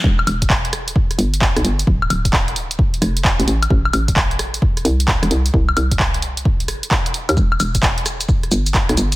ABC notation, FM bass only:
X:1
M:4/4
L:1/16
Q:"Swing 16ths" 1/4=131
K:Ephr
V:1 name="FM bass" clef=bass
E,,,2 E,,,6 z2 G,,,3 B,,, G,,,2 | D,,,2 D,,,6 z2 F,,,3 A,,, A,,,2 | A,,,2 A,,,6 z2 C,,3 E,,, C,,2 | C,,2 C,,8 G,,, z4 _E,, |
E,,,2 E,,,6 z2 G,,,3 B,,, G,,,2 |]